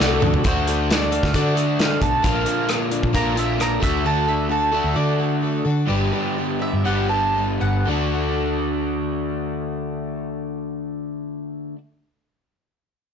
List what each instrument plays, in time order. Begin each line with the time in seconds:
Already playing: overdriven electric guitar D3 A3 D4 F#4, tonewheel organ D4 F#4 A4, mandolin D5
0.00 fingered electric bass C2, twelve-string acoustic guitar A3 D4 F#4 A4, snare
0.20 fingered electric bass D2, twelve-string acoustic guitar D4 F#4 A4, mid tom
0.34 floor tom
0.44 fingered electric bass D2, twelve-string acoustic guitar D3 A3 D4 F#4 A4, mandolin C5, kick, closed hi-hat
0.67 twelve-string acoustic guitar D4 F#4 A4, closed hi-hat
0.89 twelve-string acoustic guitar A3 D4 F#4 A4, mandolin D5, snare, closed hi-hat
1.11 twelve-string acoustic guitar D4 F#4 A4, mandolin F5, closed hi-hat
1.23 fingered electric bass D2, kick, snare
1.33 twelve-string acoustic guitar D3 A3 D4 F#4 A4, fingered electric bass D3, mandolin D5, kick, closed hi-hat
1.55 twelve-string acoustic guitar D4 F#4 A4, closed hi-hat
1.78 twelve-string acoustic guitar A3 D4 F#4 A4, mandolin F5, snare, closed hi-hat
2.00 fingered electric bass B1, twelve-string acoustic guitar D4 F#4 A4, mandolin A5, kick, closed hi-hat
2.22 fingered electric bass A#1, twelve-string acoustic guitar A#2 F3 A#3 D4 F4 A#4, overdriven electric guitar D3, mandolin F5, kick, closed hi-hat
2.45 twelve-string acoustic guitar A#3 D4 F4 A#4, closed hi-hat
2.69 twelve-string acoustic guitar A#3 D4 F4 A#4, cross-stick, closed hi-hat
2.90 twelve-string acoustic guitar A#3 D4 F4 A#4, closed hi-hat
3.03 fingered electric bass A#2, kick
3.13 fingered electric bass A#1, twelve-string acoustic guitar A#2 F3 A#3 D4 F4 A#4, overdriven electric guitar D3, mandolin A#5, kick, closed hi-hat
3.35 twelve-string acoustic guitar A#3 D4 F4 A#4, closed hi-hat
3.39 mandolin E5
3.58 twelve-string acoustic guitar A#3 D4 F4 A#4, mandolin A#5, cross-stick, closed hi-hat
3.80 fingered electric bass D2, overdriven electric guitar D3 A3, twelve-string acoustic guitar D4 F#4 A4, mandolin E5, kick, closed hi-hat
4.04 fingered electric bass D2, twelve-string acoustic guitar D3 A3 D4 F#4 A4, mandolin A5
4.28 twelve-string acoustic guitar D4 F#4 A4, mandolin E5
4.49 twelve-string acoustic guitar A3 D4 F#4 A4, mandolin A5
4.72 overdriven electric guitar D3 A3, twelve-string acoustic guitar D4 F#4 A4, mandolin E5
4.84 fingered electric bass D2
4.94 twelve-string acoustic guitar D3 A3 D4 F#4 A4, fingered electric bass D3, mandolin D5
5.19 twelve-string acoustic guitar D4 F#4 A4
5.41 twelve-string acoustic guitar A3 D4 F#4 A4
5.65 fingered electric bass D3, twelve-string acoustic guitar D4 F#4 A4
5.87 fingered electric bass G1, overdriven electric guitar G2 D3 B3, twelve-string acoustic guitar G3 D4 G4 B4
6.12 twelve-string acoustic guitar D4 G4 B4
6.36 twelve-string acoustic guitar G3 D4 G4 B4
6.59 twelve-string acoustic guitar D4 G4 B4, mandolin E5
6.73 fingered electric bass G2
6.84 fingered electric bass G1, overdriven electric guitar G2 D3 B3, twelve-string acoustic guitar G3 D4 G4 B4, mandolin F#5
7.09 twelve-string acoustic guitar D4 G4 B4, mandolin A5
7.35 twelve-string acoustic guitar G3 D4 G4 B4
7.60 fingered electric bass G1, twelve-string acoustic guitar D4 G4 B4, mandolin F#5
7.85 fingered electric bass D2, twelve-string acoustic guitar D3 A3
7.89 twelve-string acoustic guitar D4 F#4 A4